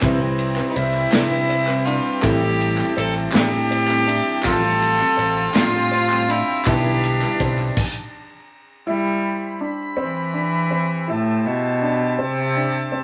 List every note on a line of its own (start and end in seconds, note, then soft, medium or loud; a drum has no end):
0.00 2.19 C2 medium
0.00 0.60 C2 loud
0.00 0.20 C3 medium
0.00 2.19 C3 medium
0.00 0.20 E3 medium
0.00 0.20 G3 medium
0.00 2.19 G3 medium
0.00 2.19 C4 medium
0.00 0.19 C4 medium
0.00 0.71 C4 medium
0.00 0.19 E4 loud
0.00 0.74 E4 medium
0.00 2.21 G4 medium
0.00 0.17 B4 medium
0.00 2.19 B4 medium
0.00 2.19 E5 medium
0.00 4.41 E5 medium
0.00 6.62 G5 medium
0.00 2.21 B5 medium
0.00 kick loud
0.00 clap loud
0.00 ride medium
0.00 shaker loud
0.19 0.58 G3 medium
0.19 0.57 C4 medium
0.19 0.56 E4 medium
0.19 0.55 B4 medium
0.39 ride medium
0.56 0.73 G3 soft
0.56 0.75 C4 soft
0.56 0.75 E4 medium
0.56 0.75 B4 medium
0.56 clap medium
0.69 0.78 D#4 medium
0.74 1.05 C2 loud
0.74 1.11 G3 medium
0.74 1.12 C4 medium
0.74 1.12 E4 medium
0.74 1.87 E4 loud
0.74 1.12 B4 medium
0.74 ride medium
0.94 clap soft
1.12 1.31 C3 medium
1.12 1.99 C3 medium
1.12 1.31 E3 medium
1.12 1.31 G3 medium
1.12 1.31 C4 medium
1.12 1.49 D4 medium
1.12 1.30 E4 medium
1.12 1.29 B4 loud
1.12 snare loud
1.12 clap medium
1.12 ride medium
1.12 shaker medium
1.30 1.68 G3 soft
1.30 1.68 C4 medium
1.30 1.66 E4 medium
1.30 1.65 B4 medium
1.49 1.86 C4 medium
1.49 ride medium
1.67 1.84 G3 medium
1.67 1.85 C4 medium
1.67 1.86 E4 medium
1.67 1.86 B4 medium
1.67 clap medium
1.67 shaker medium
1.85 2.21 G3 medium
1.85 2.21 C4 medium
1.85 2.23 D4 medium
1.85 2.24 F4 loud
1.85 2.22 B4 medium
1.85 ride medium
2.04 shaker soft
2.22 4.40 A1 medium
2.22 2.81 A1 loud
2.22 2.41 A2 medium
2.22 4.40 A2 medium
2.22 2.41 E3 medium
2.22 4.40 G3 medium
2.22 2.41 G3 medium
2.22 4.40 A3 medium
2.22 4.40 C4 medium
2.22 2.40 C4 medium
2.22 2.95 E4 medium
2.22 4.40 E4 medium
2.22 2.40 E4 medium
2.22 7.72 G4 medium
2.22 2.97 G4 loud
2.22 4.40 A4 medium
2.22 2.39 A4 medium
2.22 6.61 A5 medium
2.22 kick loud
2.22 clap medium
2.22 ride medium
2.22 shaker medium
2.40 2.77 G3 medium
2.40 2.76 C4 soft
2.40 2.76 E4 medium
2.40 2.75 A4 medium
2.61 ride medium
2.76 2.93 G3 medium
2.76 2.94 C4 soft
2.76 2.94 E4 medium
2.76 2.95 A4 medium
2.76 clap medium
2.76 shaker medium
2.94 3.26 A1 loud
2.94 3.31 G3 medium
2.94 3.31 C4 medium
2.94 3.33 C4 medium
2.94 3.31 E4 medium
2.94 3.32 A4 medium
2.94 3.14 A4 loud
2.94 ride medium
3.15 clap soft
3.31 3.51 A2 medium
3.31 4.20 A2 loud
3.31 3.51 E3 medium
3.31 3.51 G3 medium
3.31 3.50 C4 medium
3.31 3.70 D4 medium
3.31 3.50 E4 medium
3.31 4.46 G4 loud
3.31 3.49 A4 medium
3.31 clap loud
3.31 shaker loud
3.35 snare loud
3.35 ride medium
3.50 3.89 G3 soft
3.50 3.88 C4 soft
3.50 3.87 E4 medium
3.50 3.86 A4 medium
3.71 4.07 C4 medium
3.71 ride medium
3.88 4.04 G3 medium
3.88 4.05 C4 medium
3.88 4.06 E4 medium
3.88 4.07 A4 medium
3.88 clap medium
3.88 shaker medium
4.05 4.42 G3 medium
4.05 4.42 C4 medium
4.05 4.43 D4 medium
4.05 4.43 E4 medium
4.05 4.42 A4 medium
4.05 ride medium
4.26 shaker soft
4.42 6.61 A1 medium
4.42 5.02 A1 loud
4.42 4.62 A2 medium
4.42 6.61 A2 medium
4.42 4.62 F3 medium
4.42 6.61 F3 medium
4.42 4.62 G3 medium
4.42 6.61 G3 medium
4.42 6.61 A3 medium
4.42 4.62 C4 medium
4.42 6.62 C4 medium
4.42 4.61 F4 medium
4.42 5.16 F4 loud
4.42 6.65 F4 loud
4.42 4.61 A4 medium
4.42 6.61 A4 medium
4.42 6.64 C5 medium
4.42 kick loud
4.42 clap loud
4.42 ride medium
4.42 shaker loud
4.47 5.52 A4 loud
4.62 5.00 G3 soft
4.62 5.00 C4 soft
4.62 4.99 F4 soft
4.62 4.98 A4 medium
4.82 ride medium
4.99 5.16 G3 soft
4.99 5.17 C4 medium
4.99 5.18 F4 soft
4.99 5.18 A4 medium
4.99 clap medium
4.99 shaker medium
5.17 5.47 A1 loud
5.17 5.54 G3 medium
5.17 5.54 C4 medium
5.17 5.55 F4 medium
5.17 5.55 A4 medium
5.17 ride medium
5.36 clap soft
5.54 5.73 A2 medium
5.54 6.41 A2 loud
5.54 5.73 F3 medium
5.54 5.73 G3 medium
5.54 5.73 C4 medium
5.54 5.91 D4 medium
5.54 6.32 F4 loud
5.54 5.73 F4 medium
5.54 5.71 A4 medium
5.54 snare loud
5.54 clap loud
5.54 ride loud
5.54 shaker loud
5.73 6.11 G3 soft
5.73 6.10 C4 soft
5.73 6.09 F4 soft
5.73 6.08 A4 medium
5.91 6.28 C4 medium
5.91 ride medium
6.09 6.26 G3 soft
6.09 6.27 C4 medium
6.09 6.29 F4 medium
6.09 6.28 A4 medium
6.09 clap medium
6.09 shaker medium
6.28 6.65 G3 medium
6.28 6.65 C4 medium
6.28 6.65 D4 medium
6.28 6.68 E4 medium
6.28 6.66 A4 medium
6.28 ride medium
6.47 shaker soft
6.65 7.72 B1 medium
6.65 7.23 B1 loud
6.65 6.84 B2 medium
6.65 7.72 D3 medium
6.65 6.84 E3 medium
6.65 7.76 G3 medium
6.65 6.84 G3 medium
6.65 7.77 B3 medium
6.65 7.76 D4 medium
6.65 8.14 D4 medium
6.65 6.84 D4 medium
6.65 7.76 E4 medium
6.65 7.38 E4 medium
6.65 6.83 E4 medium
6.65 7.72 G4 medium
6.65 7.77 B4 medium
6.65 6.82 B4 medium
6.65 7.75 D5 medium
6.65 7.75 E5 medium
6.65 7.75 B5 medium
6.65 kick loud
6.65 clap loud
6.65 ride medium
6.65 shaker loud
6.84 7.22 G3 soft
6.84 7.22 D4 soft
6.84 7.21 E4 medium
6.84 7.20 B4 medium
7.02 clap soft
7.02 ride medium
7.02 shaker soft
7.21 7.38 G3 soft
7.21 7.40 D4 soft
7.21 7.40 E4 soft
7.21 7.39 B4 medium
7.21 clap medium
7.21 shaker medium
7.39 7.69 B1 medium
7.39 7.76 G3 medium
7.39 7.76 C4 medium
7.39 7.77 D4 medium
7.39 7.77 E4 medium
7.39 7.77 B4 medium
7.39 kick medium
7.39 ride medium
7.58 clap soft
7.77 kick loud
7.77 crash medium
8.87 9.57 G3 loud
8.87 9.59 E4 loud
8.87 13.04 G4 medium
8.87 13.04 C5 medium
8.87 13.04 E5 medium
8.87 11.07 B5 loud
9.61 9.97 D4 medium
9.97 11.12 E3 medium
9.97 10.33 C4 loud
10.34 10.70 D4 medium
10.71 11.07 C4 medium
11.08 11.47 A2 medium
11.08 11.80 E4 medium
11.08 13.04 A5 loud
11.46 12.21 B2 medium
11.82 12.18 D4 medium
12.18 13.02 C3 loud
12.18 12.55 C4 medium
12.56 12.92 D4 medium
12.92 13.04 C4 medium